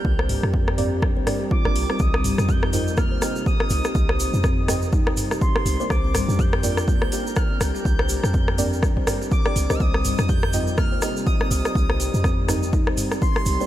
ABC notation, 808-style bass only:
X:1
M:4/4
L:1/16
Q:"Swing 16ths" 1/4=123
K:Cm
V:1 name="808-style bass" clef=bass
C,,3 F,,6 C,, z3 G,,, C,, z | C,,3 F,,6 E,, z4 C,, z | C,,3 F,,6 E,, z4 C,, z | C,,3 F,,6 C,, z4 C,, z |
C,,3 F,,6 C,, z4 C,, C,, | C,,3 F,,6 E,, z4 C,, z | C,,3 F,,6 E,, z4 C,, z |]